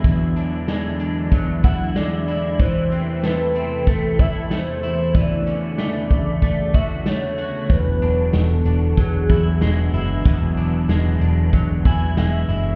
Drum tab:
HH |xxxxxxxx|xxxxxxxx|xxxxxxxx|xxxxxxxx|
SD |--o---o-|--o---o-|--o---o-|--o---o-|
BD |o---oo--|o---oo--|o--ooo--|o---oo--|

HH |xxxxxxxx|
SD |--o---o-|
BD |o---oo--|